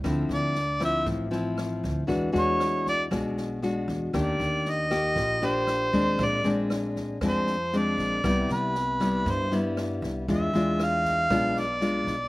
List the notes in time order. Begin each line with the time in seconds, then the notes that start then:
0.04 D2 D3 F3 C4 E4, kick, cross-stick, snare
0.29 D2, snare
0.34 D5
0.55 snare
0.80 F3 C4 E4, kick, cross-stick, snare
0.85 E5
1.06 A1 A2, kick, snare
1.31 F3 C4 E4, snare
1.58 cross-stick, snare
1.83 D2, kick, snare
2.07 E2 E3 G#3 D4 F#4, kick, snare
2.33 E2 G#3 D4 F#4, snare
2.38 C#5
2.60 cross-stick, snare
2.86 D5, kick, snare
3.11 B1 B2 G#3 D4 F#4, kick, cross-stick, snare
3.37 snare
3.62 G#3 D4 F#4, snare
3.88 E2, kick, snare
4.13 D#2 D#3 A#3 D4 G4, kick, cross-stick, snare
4.19 D5
4.40 D#2, snare
4.65 snare
4.71 D#5
4.90 A#3 G4, kick, cross-stick, snare
5.16 A#1 A#2, kick, snare
5.42 A#3 D4 G4, snare
5.46 C5
5.67 cross-stick, snare
5.93 D#2 G#3 C4 D4, kick, snare
6.18 A#1 A#2, kick, snare
6.25 D5
6.44 A#1 G#3 C4 D4, snare
6.70 cross-stick, snare
6.96 kick, snare
7.21 F2 F3 G#3 C4 D4, kick, cross-stick, snare
7.26 C5
7.47 snare
7.72 G#3 C4 D4, snare
7.77 D5
7.98 A#1, kick, snare
8.24 C2 C3 G3 B3 E4, kick, cross-stick, snare
8.49 C2 B4, snare
8.75 snare
9.00 G3 B3 E4, kick, cross-stick, snare
9.26 G2, kick, snare
9.31 C5
9.51 G3 B3 E4, snare
9.77 cross-stick, snare
10.02 C2, kick, snare
10.28 E2 E3 G#3 D4 F4, kick, snare
10.35 E5
10.53 E2 G#3 D4 F4, snare
10.79 cross-stick, snare
10.85 F5
11.05 kick, snare
11.30 B1 B2 G#3 D4 F4, kick, cross-stick, snare
11.57 D5, snare
11.81 G#3 D4 F4, snare
12.07 B1, kick, snare